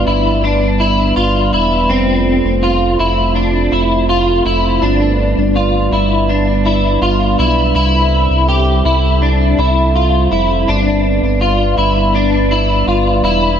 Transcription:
Already playing: G3 B3 D4 B4 D5
0.07 G1 E4
0.44 D4
0.80 E4
1.16 G1 F4
1.53 E1 E4
1.89 F1 A3 C4 F4 A4 C5
2.45 F1
2.63 F4
2.99 F1 E4
3.35 D4
3.72 F1 E4
4.09 F4
4.45 F1 E4
4.82 G1 G3 B3 D4 B4 D5
5.37 G1
5.56 F4
5.92 G1 E4
6.29 D4
6.66 E4
7.02 G1 F4
7.39 B1 E4
7.75 C2 C4 E4 A4 C5 E5
8.30 C2
8.49 G4
8.85 C2 E4
9.22 D4
9.58 C2 E4
9.96 F4
10.31 F1 E4
10.67 G1 B3 D4 B4 D5
11.22 G1
11.41 F4
11.78 G1 E4
12.15 D4
12.51 E4
12.87 G1 F4
13.23 E1 E4

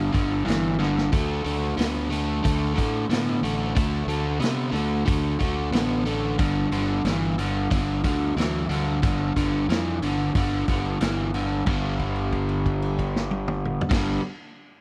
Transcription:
Already playing: G1 G2 D3
0.12 G1 G2 D3, kick, open hi-hat
0.45 G1 G2 E3, open hi-hat
0.50 snare
0.79 G2 D3, snare
0.98 snare
1.12 D2 D3 A3, kick, open hi-hat
1.44 D2 D3 A3, open hi-hat
1.77 D2 D3 B3, snare, open hi-hat
2.10 D3 A3, open hi-hat
2.44 D2 D3 A3, kick, open hi-hat
2.65 snare
2.76 A2 D3 A3, kick, open hi-hat
3.09 A2 D3 B3, snare, open hi-hat
3.42 A1 D3 A3, open hi-hat
3.75 D2 D3 A3, kick, open hi-hat
4.07 D2 D3 A3, open hi-hat
4.39 C3 D3 B3, open hi-hat
4.44 snare
4.72 D2 D3 A3, open hi-hat
5.06 D2 D3 A3, kick, open hi-hat
5.39 D2 D3 A3, kick, open hi-hat
5.71 A1 D3 B3, snare, open hi-hat
6.05 D3 A3, open hi-hat
6.38 G1 G2 D3, kick, open hi-hat
6.71 G1 G2 D3, open hi-hat
7.04 G1 G2 E3, snare, open hi-hat
7.38 G2 D3, open hi-hat
7.70 G1 G2 D3, kick, open hi-hat
8.04 D2 G2 D3, kick, open hi-hat
8.36 D2 G2 E3, snare, open hi-hat
8.69 D2 G2 D3, open hi-hat
9.02 G1 G2 D3, kick, open hi-hat
9.36 G1 G2 D3, kick, open hi-hat
9.68 F2 G2 E3, open hi-hat
9.72 snare
10.02 G1 G2 D3, open hi-hat
10.35 G1 G2 D3, kick, open hi-hat
10.68 G1 G2 D3, kick, open hi-hat
11.01 G1 G2 E3, snare, open hi-hat
11.34 G2 D3, open hi-hat
11.66 G1 G2 D3 G3, kick, crash
11.99 kick, crash
12.16 crash
12.32 kick, crash
12.49 crash
12.66 kick, crash
12.82 crash
12.99 kick, crash
13.16 snare
13.31 high tom
13.48 mid tom
13.65 mid tom
13.81 floor tom
13.89 G1 G2 D3 G3, kick, snare, crash

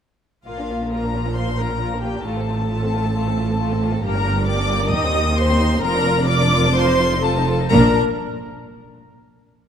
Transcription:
0.45 A#1 A#2 A#3 F4 F5
0.58 D4 A#4
0.70 A#3 F4
0.80 D4 A#4
0.92 A#3 F4 A#4 A#5
1.03 D4 A#4
1.15 A#3 F4
1.26 D4 A#4
1.36 A#3 F4 C5 C6
1.48 D4 A#4
1.59 A#3 F4 A#4 A#5
1.70 D4 A#4
1.81 A#3 F4
1.93 D4 A#4
2.03 A#3 F4 G4 G5
2.14 D4 A#4
2.25 A1 A2 A3 F4 A4 A5
2.37 C4 A4
2.48 A3 F4
2.59 C4 A4
2.70 A3 F4
2.82 C4 A4
2.92 A3 F4
3.03 C4 A4
3.15 A3 F4
3.26 C4 A4
3.38 A3 F4
3.49 C4 A4
3.59 A3 F4
3.71 C4 A4
3.82 A3 F4
3.91 C4 A4
4.03 G1 G2 A#3 G4 A#4 A#5
4.14 D4 A#4
4.25 A#3 G4
4.36 D4 A#4
4.47 A#3 G4 D5 D6
4.57 D4 A#4
4.69 A#3 G4
4.79 D4 A#4
4.92 D#2 D#4 G4 D#5 D#6
5.04 C4 D#4
5.14 D#4 G4
5.26 C4 D#4
5.37 D#4 G4 C5 C6
5.49 C4 D#4
5.61 D#4 G4
5.73 C4 D#4
5.82 F1 F2 F4 A#4 A#5
5.96 D4 D5
6.06 F4 A#4
6.18 D4 D5
6.28 F4 A#4 D5 D6
6.41 D4 D5
6.53 F4 A#4
6.64 D4 D5
6.74 F4 A4 C5 C6
6.87 D#4 C5
6.98 F4 A4
7.11 D#4 C5
7.22 F4 A4 A5
7.35 D#4 C5
7.46 F4 A4
7.59 D#4 C5
7.71 A#1 A#2 D4 A#4 A#5

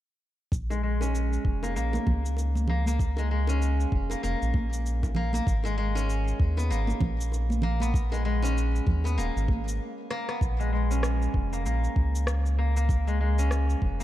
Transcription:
0.52 A#1, kick, cabasa
0.70 G#3, high bongo, cabasa
0.83 G#3
1.01 C#4, high bongo, cabasa
1.15 cabasa
1.33 cabasa
1.45 F1, kick
1.63 A#3, high bongo, cabasa
1.75 A#1 A#3, cabasa
1.93 high bongo, high conga, cabasa
2.07 C#2, kick, high conga, low conga
2.26 cabasa
2.37 high bongo, cabasa
2.55 high conga, cabasa
2.67 A#3, low conga
2.86 A#3, high conga, cabasa
2.99 kick, cabasa
3.17 G#3, high bongo, cabasa
3.31 G#3
3.47 C#4, high bongo, cabasa
3.62 cabasa
3.80 cabasa
3.92 F1, kick
4.10 A#3, high bongo, cabasa
4.23 F1 A#3, cabasa
4.42 A#1, cabasa
4.54 kick, high conga
4.73 cabasa
4.86 cabasa
5.03 kick, high bongo, cabasa
5.15 A#3, low conga
5.33 A#3, high bongo, high conga, cabasa
5.47 G#1, kick, cabasa
5.64 G#3, high bongo, cabasa
5.78 G#3
5.95 C#4, high bongo, cabasa
6.10 cabasa
6.28 cabasa
6.40 D#2, kick
6.57 B3, high bongo, cabasa
6.70 G#1 A#3, cabasa
6.87 high bongo, high conga, cabasa
7.00 A#1, kick, high conga, low conga
7.21 cabasa
7.32 high bongo, cabasa
7.50 high conga, cabasa
7.62 A#3, low conga
7.80 B3, high conga, cabasa
7.94 kick, cabasa
8.12 G#3, high bongo, cabasa
8.25 G#3
8.42 C#4, high bongo, cabasa
8.58 cabasa
8.76 cabasa
8.87 D#2, kick, low conga
9.04 B3, high bongo, cabasa
9.18 D#1 A#3, cabasa
9.36 G#1, cabasa
9.48 kick, high conga
9.68 cabasa
10.10 A#3, cross-stick
10.29 B3, cross-stick
10.41 A#1, kick, cabasa
10.60 G#3, cabasa
10.73 G#3
10.91 C#4, cabasa
11.03 cross-stick, cabasa
11.22 cabasa
11.34 F1, kick
11.53 A#3, cabasa
11.65 A#1 A#3, cabasa
11.84 cabasa
11.96 C#2, kick
12.15 cabasa
12.27 cross-stick, cabasa
12.46 cabasa
12.58 A#3
12.77 A#3, cabasa
12.89 kick, cabasa
13.07 G#3, cabasa
13.21 G#3
13.39 C#4, cabasa
13.51 cross-stick, cabasa
13.70 cabasa
13.82 F1, kick
14.00 A#3, cabasa

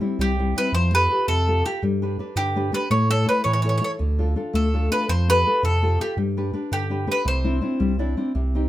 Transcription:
0.01 G3 C4 E4
0.19 C2 G3 G4
0.39 G3 C4 E4
0.56 G3 C4 E4 B4
0.72 F2 F3 C5
0.93 F4 G4 A4 B4
1.10 F4 G4 A4
1.28 F2 C3 A4
1.47 F4 G4 A4
1.65 F4 G4 A4
1.82 G2 G3
2.02 D4 G4 B4
2.19 D4 G4 B4
2.36 G2 D3 G4
2.56 D4 G4 B4
2.72 D4 G4 B4
2.90 A2 A3 C#5
3.10 E4 A4 C#5
3.26 E4 A4 B4 C#5
3.44 A2 E3 C#5
3.53 C#5
3.62 E4 A4 C#5
3.69 C#5
3.78 E4 A4 C#5
3.82 C#5
3.99 D2 D3
4.19 D4 F4 A4
4.36 D4 F4 A4
4.53 D2 A3 A4
4.74 D4 F4 A4
4.91 D4 F4 A4 B4
5.08 F2 F3 C5
5.28 F4 G4 A4 B4
5.47 F4 G4 A4
5.63 F2 C3 A4
5.83 F4 G4 A4
6.00 F4 G4 A4
6.17 G2 G3
6.37 D4 G4 B4
6.53 D4 G4 B4
6.72 G2 D3 G4
6.90 D4 G4 B4
7.07 D4 G4 B4
7.12 B4
7.25 C2 C3 C5
7.44 C4 D4 E4
7.61 C4 D4 E4
7.80 C2 G3
7.99 C4 D4 E4 D5
8.17 C4 D4 E4
8.35 C2 C3
8.55 C4 D#4 G4

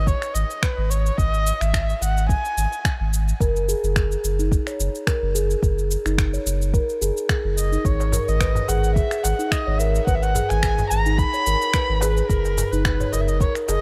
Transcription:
Already playing: G#1
0.07 C#5, kick, cabasa
0.22 finger snap, cabasa
0.34 G#1 D#5, cabasa
0.50 cabasa
0.62 B4, finger snap, kick, cabasa
0.78 G#1
0.90 C#5, cabasa
1.06 cabasa
1.17 G#1 D#5, kick, cabasa
1.34 cabasa
1.47 cabasa
1.60 G#1 E5, finger snap, cabasa
1.74 finger snap, kick, cabasa
1.90 cabasa
2.01 G#1 F#5, cabasa
2.17 cabasa
2.29 G#5, kick, cabasa
2.45 cabasa
2.57 G#1, cabasa
2.73 cabasa
2.85 finger snap, kick, cabasa
3.00 G#1
3.13 cabasa
3.28 cabasa
3.40 F#1 A#4, kick, cabasa
3.56 cabasa
3.68 G#4, cabasa
3.83 F#1, cabasa
3.96 finger snap, kick, cabasa
4.12 cabasa
4.24 F#1, cabasa
4.39 D#4, cabasa
4.52 kick, cabasa
4.67 C#5, finger snap, cabasa
4.79 F#1, cabasa
4.95 cabasa
5.07 A#4, finger snap, kick, cabasa
5.22 F#1
5.35 G#4, cabasa
5.51 cabasa
5.63 F#1 G#4, kick, cabasa
5.79 cabasa
5.91 cabasa
6.05 F#1 D#4, finger snap, cabasa
6.18 finger snap, kick, cabasa
6.33 C#5, cabasa
6.46 F#1, cabasa
6.62 cabasa
6.74 A#4, kick, cabasa
6.89 cabasa
7.01 F#1 G#4, cabasa
7.17 cabasa
7.29 finger snap, kick, cabasa
7.44 F#1
7.58 D#5, cabasa
7.72 D#4, cabasa
7.85 G#1 C#5, kick, cabasa
8.00 C#5, darbuka ka, cabasa
8.12 A#4, darbuka tek, darbuka dum, cabasa
8.28 G#1 D#5, cabasa
8.40 B4, finger snap, kick, cabasa
8.55 darbuka dum, cabasa
8.68 G#1 G#4 F#5, darbuka dum, cabasa
8.84 cabasa
8.96 G#4 E5, kick, cabasa
9.11 finger snap, darbuka ka, cabasa
9.23 G#1 F#5, darbuka tek, cabasa
9.39 D#4, cabasa
9.51 D#5, finger snap, kick, cabasa
9.67 G#1 C#5
9.78 A#4 E5, cabasa
9.95 cabasa
10.06 G#1 B4 F#5, kick, cabasa
10.15 E5
10.22 F#5, darbuka ka, cabasa
10.35 G#4, darbuka tek, darbuka dum, cabasa
10.49 G#1 G#5, finger snap, cabasa
10.63 finger snap, kick, cabasa
10.78 darbuka dum, cabasa
10.90 G#1 A#5, cabasa
11.06 D#4, cabasa
11.18 B5, kick, cabasa
11.34 C#5, cabasa
11.46 G#1 A#4, cabasa
11.61 darbuka tek, cabasa
11.74 B4, finger snap, kick, cabasa
11.89 G#1
12.01 G#4 B4, darbuka ka, darbuka tek, cabasa
12.17 darbuka tek, cabasa
12.29 F#1 A#4, kick, cabasa
12.45 darbuka ka, cabasa
12.58 darbuka tek, darbuka dum, cabasa
12.71 F#1 D#4 B4, cabasa
12.85 finger snap, kick, cabasa
13.00 C#5, darbuka dum, cabasa
13.12 F#1 A#4 D#5, darbuka dum, cabasa
13.20 E5
13.28 D#5, cabasa
13.41 A#4 C#5, kick, cabasa
13.55 finger snap, darbuka ka, cabasa
13.68 F#1 G#4 D#5, darbuka tek, cabasa

